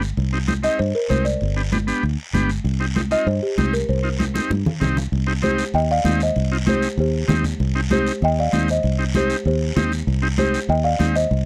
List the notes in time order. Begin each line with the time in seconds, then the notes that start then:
Already playing: G1
0.02 short guiro
0.17 C2, high conga, long guiro
0.33 C4 D#4 G4
0.47 C4 D#4 G4, high conga, short guiro
0.63 C4 D#4 G4 D#5, short guiro
0.79 G2 C5, high conga, long guiro
0.95 A#4
1.09 C2 C4 D#4 G4 C5, high conga, short guiro
1.25 D5, short guiro
1.41 G1, high conga, long guiro
1.56 B3 D4 G4
1.72 B3 D4 G4, high conga, short guiro
1.87 B3 D4 G4, short guiro
2.03 D2, high conga, long guiro
2.33 G1 B3 D4 G4, high conga, short guiro
2.50 short guiro
2.64 C2, high conga, long guiro
2.80 C4 D#4 G4
2.95 C4 D#4 G4, high conga, short guiro
3.11 C4 D#4 F4 D#5, short guiro
3.27 G2 C5, high conga, long guiro
3.43 G4
3.58 C2 C4 D#4 G4, high conga, short guiro
3.73 A#4, short guiro
3.89 C2 C5, high conga, long guiro
4.03 C4 D#4 F4
4.19 C4 D#4 G4, high conga, short guiro
4.34 C4 D#4 G4, high conga, short guiro
4.50 G2, high conga, long guiro
4.66 low conga
4.80 C2 C4 D#4 G4, low conga, short guiro
4.97 low conga, short guiro
5.12 C2, high conga, long guiro
5.27 C4 D#4 G4
5.42 C4 D#4 G4 C5, high conga, short guiro
5.58 short guiro
5.74 D#2 D#5 G5, high conga, long guiro
5.91 D5 F5
6.04 D#2 C4 D#4 G4, high conga, short guiro
6.20 C5 D#5, short guiro
6.36 C2, high conga, long guiro
6.52 C4 D#4 F4
6.66 C4 D#4 G4 C5, high conga, short guiro
6.82 short guiro
6.97 D#2 G4 C5, high conga, long guiro
7.28 D#2 C4 D#4 G4, high conga, low conga, short guiro
7.44 low conga, short guiro
7.60 C2, high conga, long guiro
7.75 C4 D#4 G4
7.91 C4 D#4 G4 C5, high conga, short guiro
8.07 short guiro
8.22 D#2 D#5 G5, high conga, long guiro
8.39 D5 F5
8.52 D#2 C4 D#4 G4, high conga, short guiro
8.68 C5 D#5, short guiro
8.83 C2, high conga, long guiro
8.99 C4 D#4 G4
9.14 C4 D#4 G4 C5, high conga, short guiro
9.30 short guiro
9.45 D#2 G4 C5, high conga, long guiro
9.76 D#2 C4 D#4 G4, high conga, low conga, short guiro
9.92 short guiro
10.07 C2, high conga, long guiro
10.22 C4 D#4 G4
10.38 C4 D#4 G4 C5, high conga, short guiro
10.54 short guiro
10.69 D#2 D#5 G5, high conga, long guiro
10.84 D5 F5
10.99 D#2 C4 D#4 G4, high conga, short guiro
11.15 C5 D#5, short guiro
11.31 C2, high conga, long guiro